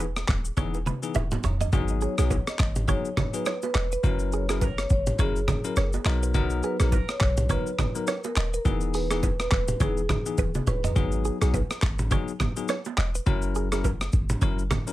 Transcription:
Already playing: E1
0.00 B4, high bongo, shaker
0.16 cross-stick, shaker
0.28 D#1, kick, cross-stick, clap, shaker
0.45 shaker
0.57 E1 E3 B3 D#4 G#4 C#5, kick, high tom, low conga, shaker
0.74 high bongo, shaker
0.86 B4, mid tom, low bongo, low conga, shaker
1.03 E3 B3 D#4 G#4, shaker
1.14 D#1 E5, mid tom, high bongo, shaker
1.31 mid tom, low bongo, shaker
1.44 D#1 C#5, floor tom, shaker
1.61 D#5, floor tom, shaker
1.73 G#1 F#3 B3 D#4 F#4 G#4, kick, low conga, shaker
1.88 shaker
2.01 G#4 C#5, shaker
2.18 B1 F#3 B3 D#4 G#4, cross-stick, shaker
2.31 B4, kick, high bongo, shaker
2.47 D#5, cross-stick, shaker
2.59 G#1, kick, cross-stick, clap, shaker
2.76 mid tom, shaker
2.88 F#3 B3 D#4 G#4 C#5, kick, low conga, shaker
3.05 shaker
3.17 B4, kick, cross-stick, mid tom, low bongo, low conga, shaker
3.33 F#3 B3 D#4 G#4 B4, shaker
3.46 C#5, cross-stick, high bongo, shaker
3.62 B4, low bongo, shaker
3.75 E1 D#5, cross-stick, clap, shaker
3.92 B4, shaker
4.03 F#1 F#3 C#4 E4 F#4 A#4, kick, low conga, shaker
4.19 shaker
4.32 G#4 C#5, shaker
4.49 F#3 C#4 E4 G#4 A#4, cross-stick, shaker
4.61 A#4, kick, high bongo, shaker
4.78 C#5, cross-stick, shaker
4.90 G#1 C#5, kick, shaker
5.07 mid tom, shaker
5.19 F#1 F#3 C#4 E4 G#4 A#4 C#5, kick, low conga, shaker
5.36 shaker
5.48 A#4, kick, cross-stick, mid tom, low bongo, low conga, shaker
5.64 F#3 C#4 E4 A#4, shaker
5.76 F#1 C#5, cross-stick, high bongo, shaker
5.93 low bongo, shaker
6.05 B1 F#3 B3 D#4 A#4 D#5, cross-stick, clap, shaker
6.23 B4, shaker
6.34 F#3 B3 D#4 F#4 A#4, kick, low conga, shaker
6.50 shaker
6.63 G#4 B4, shaker
6.80 A#1 F#3 B3 D#4 G#4 A#4, cross-stick, shaker
6.92 A#4, kick, high bongo, shaker
7.09 C#5, cross-stick, shaker
7.20 B1 C#5, kick, cross-stick, clap, shaker
7.37 mid tom, shaker
7.49 F#3 B3 D#4 A#4 B4 C#5, kick, low conga, shaker
7.67 shaker
7.78 B4, kick, cross-stick, mid tom, low bongo, low conga, shaker
7.95 F#3 B3 D#4 A#4, shaker
8.07 C#5, cross-stick, high bongo, shaker
8.24 A#4, low bongo, shaker
8.36 D#1 D#5, cross-stick, clap, shaker
8.54 A#4 B4, shaker
8.65 E1 E3 B3 D#4 F#4 G#4, kick, low conga, shaker
8.81 shaker
8.94 G#4 B4, open hi-hat, shaker
9.10 E3 B3 D#4 G#4, cross-stick, shaker
9.23 B4, kick, high bongo, shaker
9.40 B4, cross-stick, shaker
9.51 D#1 B4, kick, cross-stick, clap, shaker
9.68 mid tom, shaker
9.80 E1 E3 B3 D#4 G#4 C#5, kick, low conga, shaker
9.97 shaker
10.09 B4, kick, cross-stick, mid tom, low bongo, low conga, shaker
10.26 E3 B3 D#4 G#4, shaker
10.38 D#1 B4, kick, high tom, high bongo, shaker
10.54 mid tom, low bongo, shaker
10.67 D#1 B4 C#5, mid tom, high bongo, shaker
10.84 D#5, floor tom, shaker
10.96 G#1 F#3 B3 D#4 F#4 G#4, kick, low conga, shaker
11.12 shaker
11.25 G#4, shaker
11.41 B1 F#3 B3 D#4 G#4, cross-stick, shaker
11.54 B4, kick, high bongo, shaker
11.71 cross-stick, shaker
11.82 G#1, kick, cross-stick, clap, shaker
11.99 mid tom, shaker
12.11 F#3 B3 D#4 G#4 C#5, kick, low conga, shaker
12.28 shaker
12.40 B4, kick, cross-stick, mid tom, low bongo, low conga, shaker
12.57 F#3 B3 D#4 G#4, shaker
12.68 C#5, cross-stick, high bongo, shaker
12.85 low bongo, shaker
12.97 E1 D#5, cross-stick, clap, shaker
13.15 B4, shaker
13.26 F#1 F#3 C#4 E4 F#4 A#4, kick, low conga, shaker
13.42 shaker
13.55 G#4, shaker
13.72 F#3 C#4 E4 G#4 A#4, cross-stick, shaker
13.84 A#4, kick, high bongo, shaker
14.01 cross-stick, shaker
14.13 G#1, kick, shaker
14.29 mid tom, shaker
14.42 F#1 F#3 C#4 E4 A#4 C#5, kick, low conga, shaker
14.59 shaker
14.71 A#4, kick, cross-stick, mid tom, low bongo, low conga, shaker
14.87 F#3 C#4 E4 A#4, shaker

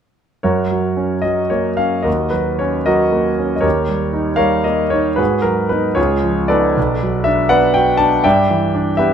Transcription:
0.43 F#2 F#4 A#4 C#5
0.71 F#3
0.97 C#4
1.22 F#3 D#5
1.50 A#3 C#5
1.77 C#4 F5
2.02 D#2 F#4 A#4 D#5
2.30 F#3 B4
2.59 C#4 C#5
2.86 F#3 F#4 A#4 D#5
3.12 A#3
3.39 C#4
3.56 D#5
3.61 D#2 G4 A#4 C#5
3.88 G3
4.13 D#4
4.36 G3 A#4 C#5 F5
4.64 A#3 D#5
4.90 D#4 C#5
5.16 G#2 F#4 G#4 B4
5.42 F#3 A#4
5.69 B3 D#4 B4
5.95 C#2 F4 G#4 C#5
6.23 F3
6.48 B3 D#4 A4 B4 D5
6.77 B1
7.03 F#3
7.24 D4 E5
7.49 B3 B4 D5 F#5
7.74 F#4 G5
7.97 D4 A5
8.24 G2 D5 E5 G5
8.51 E3
8.75 D4
8.97 B3 G4 B4 E5

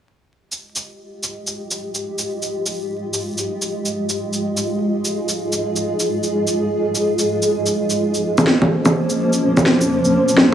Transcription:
0.36 G#3 F4 G4 D#5
0.52 shaker
0.76 shaker
1.23 shaker
1.47 shaker
1.71 shaker
1.95 shaker
2.19 shaker
2.42 shaker
2.66 shaker
3.14 shaker
3.38 shaker
3.62 shaker
3.86 shaker
4.09 shaker
4.17 G#4
4.33 shaker
4.57 shaker
5.05 shaker
5.29 shaker
5.53 shaker
5.76 shaker
6.00 shaker
6.23 shaker
6.47 shaker
6.95 shaker
7.19 shaker
7.43 shaker
7.66 shaker
7.90 shaker
7.99 F3 A#3 C#4 C5
8.14 shaker
8.38 low bongo, shaker
8.47 snare
8.62 low bongo
8.86 low bongo, shaker
9.10 shaker
9.33 shaker
9.57 low bongo, shaker
9.66 snare
9.81 shaker
10.05 shaker
10.29 shaker
10.37 snare

